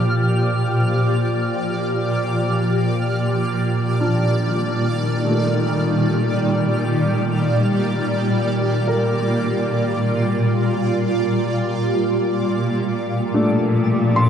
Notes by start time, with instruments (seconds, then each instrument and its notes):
Already playing: synth drone A#2, ambient pad A#2 F3 G4 D5, felt piano A#4, synth texture F6
2.79 synth texture F6
3.30 ambient pad G3
3.48 ambient pad D#3
4.01 felt piano F3 D4
5.24 felt piano A3
7.98 ambient pad F4
8.88 felt piano A#4
12.53 cello section A#2, synth texture A6
12.68 ambient pad F3
13.03 ambient pad G4
13.34 felt piano A3 D4
14.16 felt piano C6